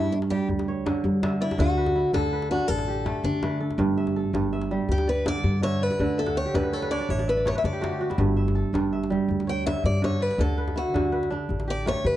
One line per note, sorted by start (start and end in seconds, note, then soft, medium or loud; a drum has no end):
0.00 0.37 G2 medium
0.00 1.64 G2 medium
0.00 1.01 A3 medium
0.00 0.13 E4 medium
0.00 1.08 A4 medium
0.00 0.25 B4 soft
0.00 0.60 E5 medium
0.12 0.17 D4 medium
0.12 djembe slap soft
0.22 djembe slap medium
0.30 0.90 G3 medium
0.30 0.47 G4 medium
0.30 djembe tone medium
0.48 0.92 D2 medium
0.48 djembe bass medium
0.59 djembe slap soft
0.59 djembe tone medium
0.68 1.29 C#5 medium
0.86 1.22 D3 medium
0.86 djembe slap medium
0.86 djembe tone medium
1.04 1.47 G3 medium
1.04 djembe bass medium
1.23 1.58 D3 medium
1.23 2.26 E5 medium
1.23 djembe slap medium
1.23 djembe tone medium
1.41 1.58 E4 medium
1.41 2.51 D5 medium
1.51 djembe slap medium
1.51 djembe tone medium
1.58 2.02 D2 loud
1.58 2.12 D3 medium
1.58 2.10 F#4 loud
1.58 djembe bass medium
1.77 2.32 B4 medium
1.86 djembe slap medium
1.86 djembe tone medium
1.96 3.52 E4 medium
2.05 djembe slap soft
2.13 2.57 D2 medium
2.13 3.84 D3 medium
2.13 2.50 A4 medium
2.13 djembe slap medium
2.13 djembe tone medium
2.13 djembe bass medium
2.33 3.42 B4 medium
2.33 djembe slap soft
2.42 djembe slap medium
2.51 4.19 D4 medium
2.51 2.68 F#4 medium
2.51 djembe tone medium
2.68 3.12 A1 medium
2.68 3.25 A4 medium
2.68 djembe bass medium
2.78 djembe slap medium
2.78 djembe tone medium
2.88 4.29 G4 medium
3.06 3.42 A3 medium
3.06 djembe slap medium
3.06 djembe tone medium
3.24 3.67 D3 loud
3.24 3.58 D4 medium
3.24 djembe bass medium
3.43 5.42 A3 medium
3.43 4.66 B4 medium
3.43 djembe slap medium
3.43 djembe tone medium
3.60 4.16 A4 medium
3.70 djembe slap soft
3.70 djembe tone soft
3.78 4.22 G1 loud
3.78 4.33 G2 medium
3.78 djembe bass medium
3.97 4.52 E5 medium
4.07 djembe slap soft
4.07 djembe tone soft
4.16 5.48 A4 medium
4.25 djembe slap soft
4.33 4.77 G1 medium
4.33 6.04 G2 medium
4.33 djembe slap medium
4.33 djembe tone medium
4.33 djembe bass medium
4.53 5.56 E5 medium
4.53 djembe slap soft
4.61 djembe slap medium
4.71 5.31 G3 medium
4.88 5.32 D2 medium
4.88 5.07 G4 medium
4.88 djembe bass medium
4.98 djembe slap medium
4.98 djembe tone medium
5.08 5.27 B4 medium
5.08 5.81 D5 medium
5.26 5.61 D3 medium
5.26 5.61 D5 loud
5.26 djembe slap medium
5.26 djembe tone medium
5.44 5.87 G2 loud
5.44 djembe bass medium
5.62 5.99 D3 medium
5.62 5.83 C#5 loud
5.62 6.17 E5 medium
5.62 djembe tone medium
5.82 6.18 B4 loud
5.82 6.79 D5 medium
5.91 djembe slap soft
5.91 djembe tone medium
5.99 6.43 D2 loud
5.99 6.53 D3 medium
5.99 djembe bass medium
6.18 6.37 A4 medium
6.18 7.09 E5 medium
6.26 6.52 F#5 medium
6.26 djembe slap medium
6.26 djembe tone medium
6.35 6.54 C#5 medium
6.35 7.29 G5 medium
6.35 djembe slap soft
6.46 7.72 G4 medium
6.54 6.97 D2 medium
6.54 8.24 D3 medium
6.54 7.64 A4 medium
6.54 6.73 B4 medium
6.54 djembe slap medium
6.54 djembe tone medium
6.54 djembe bass medium
6.63 6.82 B4 medium
6.63 djembe slap soft
6.73 6.92 A4 medium
6.73 6.91 C#5 medium
6.82 7.55 B4 medium
6.82 djembe slap medium
6.91 7.52 D4 medium
6.91 7.25 C#5 medium
6.91 7.10 D5 medium
6.91 djembe slap soft
7.00 7.19 D5 medium
7.09 7.52 A1 medium
7.09 7.28 C#5 medium
7.09 7.27 E5 medium
7.09 djembe slap soft
7.09 djembe bass medium
7.19 7.36 D5 medium
7.19 djembe slap medium
7.19 djembe tone medium
7.28 7.47 B4 medium
7.28 8.31 E5 medium
7.37 8.48 D5 medium
7.45 7.81 A3 medium
7.45 8.60 C#5 medium
7.45 7.58 C#5 medium
7.45 djembe slap medium
7.45 djembe tone medium
7.55 8.78 B4 medium
7.55 7.65 E5 medium
7.55 djembe slap soft
7.64 8.07 D3 medium
7.64 8.55 A4 medium
7.64 8.16 D5 medium
7.64 djembe slap soft
7.64 djembe bass medium
7.73 7.91 G4 medium
7.81 9.81 A3 medium
7.81 8.00 F#4 medium
7.81 djembe slap medium
7.81 djembe tone medium
7.91 9.32 G4 medium
8.01 8.25 F#4 medium
8.01 djembe slap soft
8.10 9.67 E4 medium
8.10 djembe slap soft
8.10 djembe tone soft
8.18 8.62 G1 loud
8.18 8.73 G2 medium
8.18 djembe bass medium
8.37 8.92 E5 medium
8.48 djembe slap soft
8.48 djembe tone soft
8.55 9.87 A4 medium
8.66 djembe slap soft
8.73 9.17 G1 medium
8.73 10.44 G2 medium
8.73 djembe slap medium
8.73 djembe tone medium
8.73 djembe bass medium
8.93 9.96 E5 medium
8.93 djembe slap soft
9.03 djembe slap soft
9.10 9.71 G3 medium
9.10 djembe tone medium
9.28 9.72 D2 medium
9.28 djembe bass medium
9.40 djembe slap soft
9.40 djembe tone soft
9.47 10.08 C#5 medium
9.47 9.66 G5 medium
9.66 10.01 D3 medium
9.66 9.85 E5 loud
9.66 djembe slap medium
9.66 djembe tone medium
9.84 10.27 G2 loud
9.84 10.02 D5 medium
9.84 djembe bass medium
10.02 10.38 D3 medium
10.02 10.22 C#5 medium
10.02 djembe slap medium
10.02 djembe tone medium
10.20 10.40 B4 medium
10.20 11.31 D5 medium
10.31 djembe slap soft
10.38 10.82 D2 loud
10.38 10.93 D3 medium
10.38 10.74 A4 medium
10.38 djembe bass medium
10.58 11.12 B4 medium
10.68 djembe slap soft
10.68 djembe tone soft
10.76 12.17 E4 medium
10.76 11.28 F#4 medium
10.86 djembe slap soft
10.94 11.37 D2 medium
10.94 12.17 D3 medium
10.94 djembe slap medium
10.94 djembe tone medium
10.94 djembe bass medium
11.12 12.17 B4 medium
11.12 djembe slap soft
11.23 djembe slap soft
11.30 12.17 D4 medium
11.30 djembe tone medium
11.49 11.92 A1 medium
11.49 djembe bass medium
11.60 djembe slap soft
11.60 djembe tone soft
11.68 12.17 G4 medium
11.68 11.86 D5 medium
11.86 12.17 A3 medium
11.86 12.06 C#5 loud
11.86 djembe slap medium
11.86 djembe tone medium
12.04 12.17 D3 medium
12.04 12.17 B4 medium
12.04 djembe bass medium